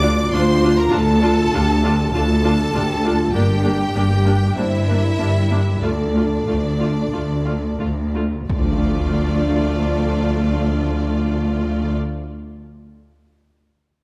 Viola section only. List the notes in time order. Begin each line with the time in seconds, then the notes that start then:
0.02 D4 F4
0.33 D4 F4
0.62 D4 F4
0.91 D4 F4
1.22 D4 F4
1.54 D4 F4
1.84 D4 F4
2.14 D4 F4
2.44 D4 F4
2.74 D4 F4
3.04 D4 F4
3.34 A#3 D4
3.64 A#3 D4
3.95 A#3 D4
4.25 A#3 D4
4.57 A#3 D4
4.88 A#3 D4
5.19 A#3 D4
5.50 A#3 D4
5.82 A3 F4
6.14 A3 F4
6.47 A3 F4
6.79 A3 F4
7.13 A3 F4
7.45 A3 F4
7.79 A3 F4
8.14 A3 F4
8.49 A3 F4